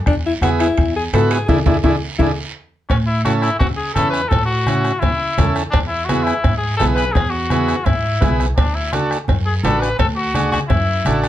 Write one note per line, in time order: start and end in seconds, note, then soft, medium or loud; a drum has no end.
0.06 0.35 E2 medium
0.06 0.15 D4 medium
0.06 bombo low medium
0.06 bombo rim medium
0.06 high timbale medium
0.06 long guiro medium
0.26 0.33 E4 medium
0.41 0.70 E2 medium
0.41 0.67 B3 medium
0.41 0.67 E4 medium
0.41 0.50 F#4 medium
0.41 0.68 G#4 medium
0.41 bombo rim medium
0.41 high conga medium
0.41 high timbale medium
0.41 short guiro medium
0.60 0.93 E4 medium
0.60 bombo rim medium
0.60 high timbale medium
0.60 short guiro medium
0.77 1.06 E2 loud
0.77 bombo low medium
0.77 bombo rim medium
0.77 high timbale medium
0.77 long guiro medium
0.96 1.04 G#4 medium
1.13 1.41 G#2 medium
1.13 1.38 B3 medium
1.13 1.38 E4 medium
1.13 1.38 F#4 medium
1.13 1.30 A4 medium
1.13 bombo rim medium
1.13 high conga medium
1.13 high timbale medium
1.13 low timbale medium
1.13 short guiro medium
1.31 1.47 G#4 medium
1.31 bombo rim medium
1.31 high timbale medium
1.31 short guiro medium
1.48 1.62 E2 medium
1.48 1.60 D4 medium
1.48 1.60 E4 medium
1.48 1.57 E4 medium
1.48 1.60 G#4 medium
1.48 bombo low medium
1.48 high conga medium
1.48 high timbale medium
1.48 long guiro medium
1.66 1.79 E2 medium
1.66 1.78 D4 medium
1.66 1.78 E4 medium
1.66 1.75 E4 medium
1.66 1.78 G#4 medium
1.66 bombo low medium
1.66 high conga medium
1.66 high timbale medium
1.66 long guiro medium
1.84 1.97 E2 medium
1.84 1.96 D4 loud
1.84 1.92 E4 medium
1.84 1.96 E4 medium
1.84 1.96 G#4 medium
1.84 bombo low medium
1.84 high conga medium
1.84 high timbale medium
1.84 long guiro medium
2.19 2.32 E2 medium
2.19 2.32 D4 medium
2.19 2.27 E4 medium
2.19 2.32 E4 medium
2.19 2.32 G#4 medium
2.19 bombo low medium
2.19 high conga medium
2.19 high timbale medium
2.19 long guiro loud
2.89 3.47 A2 loud
2.89 2.97 C#4 medium
2.89 bombo low medium
2.89 bombo rim medium
2.89 cowbell loud
2.89 long guiro medium
3.07 3.24 E4 medium
3.25 3.50 C#4 medium
3.25 3.50 E4 medium
3.25 3.33 F#4 medium
3.25 3.51 A4 medium
3.25 bombo rim medium
3.25 cowbell medium
3.25 high conga medium
3.25 short guiro medium
3.42 3.59 E4 medium
3.42 bombo rim medium
3.42 short guiro medium
3.59 3.89 C#3 medium
3.59 3.68 F#4 medium
3.59 bombo low medium
3.59 bombo rim medium
3.59 cowbell medium
3.59 low conga medium
3.59 long guiro medium
3.77 3.94 G#4 medium
3.94 4.25 E2 medium
3.94 4.22 C#4 medium
3.94 4.22 E4 medium
3.94 4.10 A4 medium
3.94 4.22 B4 medium
3.94 bombo rim medium
3.94 cowbell medium
3.94 high conga medium
3.94 low conga medium
3.94 short guiro medium
4.10 4.30 B4 medium
4.10 bombo rim medium
4.10 short guiro medium
4.29 4.89 A2 loud
4.29 4.45 A4 loud
4.29 bombo low medium
4.29 bombo rim medium
4.29 cowbell loud
4.29 low conga medium
4.29 long guiro medium
4.46 5.01 F#4 loud
4.66 4.92 C#4 medium
4.66 4.93 E4 medium
4.66 4.93 F#4 medium
4.66 bombo rim medium
4.66 cowbell medium
4.66 high conga medium
4.66 short guiro medium
4.84 bombo rim medium
4.84 short guiro medium
5.00 5.31 C#3 medium
5.00 5.54 E4 loud
5.00 bombo low medium
5.00 bombo rim medium
5.00 cowbell medium
5.00 low conga medium
5.00 long guiro medium
5.38 5.67 E2 medium
5.38 5.63 C#4 medium
5.38 5.63 E4 medium
5.38 5.63 A4 medium
5.38 bombo low medium
5.38 bombo rim medium
5.38 cowbell medium
5.38 high conga medium
5.38 low conga medium
5.38 low timbale medium
5.38 short guiro medium
5.56 bombo rim medium
5.56 short guiro medium
5.70 6.30 E2 loud
5.70 5.79 D4 medium
5.70 bombo low medium
5.70 bombo rim medium
5.70 cowbell loud
5.70 low conga medium
5.70 long guiro medium
5.88 6.07 E4 medium
6.05 6.34 B3 medium
6.05 6.25 F#4 medium
6.05 high conga medium
6.05 short guiro medium
6.09 6.34 E4 medium
6.09 6.34 G#4 medium
6.09 bombo rim medium
6.09 cowbell medium
6.24 6.57 E4 loud
6.24 bombo rim medium
6.24 short guiro medium
6.44 6.73 G#2 medium
6.44 bombo low medium
6.44 bombo rim medium
6.44 cowbell medium
6.44 low conga medium
6.44 long guiro medium
6.57 6.76 G#4 medium
6.77 7.09 B1 medium
6.77 7.05 B3 medium
6.77 7.05 E4 medium
6.77 7.05 G#4 medium
6.77 6.86 A4 medium
6.77 bombo rim medium
6.77 high conga medium
6.77 low conga medium
6.77 short guiro medium
6.81 cowbell medium
6.81 low timbale medium
6.95 7.14 B4 medium
6.95 bombo rim medium
6.95 short guiro medium
7.12 7.72 E2 loud
7.12 7.32 G#4 medium
7.12 bombo low medium
7.12 bombo rim medium
7.12 low conga medium
7.12 long guiro medium
7.17 cowbell loud
7.30 7.86 F#4 medium
7.50 7.76 B3 medium
7.50 7.76 E4 medium
7.50 7.77 G#4 medium
7.50 bombo rim medium
7.50 cowbell medium
7.50 high conga medium
7.50 short guiro medium
7.68 bombo rim medium
7.68 short guiro medium
7.85 8.15 G#2 medium
7.85 8.39 E4 medium
7.85 bombo low medium
7.85 bombo rim medium
7.85 cowbell medium
7.85 low conga medium
7.85 long guiro medium
8.21 8.50 B1 medium
8.21 8.46 B3 medium
8.21 8.46 E4 medium
8.21 8.46 G#4 medium
8.21 bombo low medium
8.21 bombo rim medium
8.21 cowbell medium
8.21 high conga medium
8.21 low conga medium
8.21 low timbale medium
8.21 short guiro medium
8.40 bombo rim medium
8.40 short guiro medium
8.56 9.14 D2 loud
8.56 8.76 D4 medium
8.56 bombo low medium
8.56 bombo rim medium
8.56 cowbell loud
8.56 low conga medium
8.56 long guiro medium
8.75 8.94 E4 medium
8.93 9.18 D4 medium
8.93 9.11 F#4 medium
8.93 9.18 F#4 medium
8.93 9.18 A4 medium
8.93 bombo rim medium
8.93 cowbell medium
8.93 high conga medium
8.93 short guiro medium
9.11 bombo rim medium
9.11 short guiro medium
9.28 9.57 F#2 medium
9.28 bombo low medium
9.28 bombo rim medium
9.28 cowbell medium
9.28 low conga medium
9.28 long guiro medium
9.46 9.54 G#4 medium
9.64 9.92 A1 medium
9.64 9.89 D4 medium
9.64 9.89 F#4 medium
9.64 9.82 A4 medium
9.64 9.89 B4 medium
9.64 bombo rim medium
9.64 cowbell medium
9.64 high conga medium
9.64 low timbale medium
9.64 short guiro medium
9.80 9.99 B4 loud
9.80 bombo rim medium
9.80 short guiro medium
9.99 10.56 D2 loud
9.99 10.07 A4 medium
9.99 bombo low medium
9.99 bombo rim medium
9.99 cowbell loud
9.99 low conga medium
9.99 long guiro medium
10.16 10.50 F#4 medium
10.34 10.60 D4 medium
10.34 10.60 F#4 medium
10.34 10.60 G#4 medium
10.34 bombo rim medium
10.34 cowbell medium
10.34 high conga medium
10.34 short guiro medium
10.52 10.60 F#4 medium
10.52 bombo rim medium
10.52 high conga medium
10.52 short guiro medium
10.68 10.99 F#2 medium
10.68 11.19 E4 medium
10.68 bombo low medium
10.68 bombo rim medium
10.68 cowbell medium
10.68 low conga medium
10.68 long guiro medium
11.05 11.28 A1 medium
11.05 11.28 D4 medium
11.05 11.28 F#4 medium
11.05 11.28 A4 medium
11.05 bombo rim medium
11.05 cowbell medium
11.05 high conga medium
11.05 short guiro medium
11.24 bombo rim medium
11.24 short guiro medium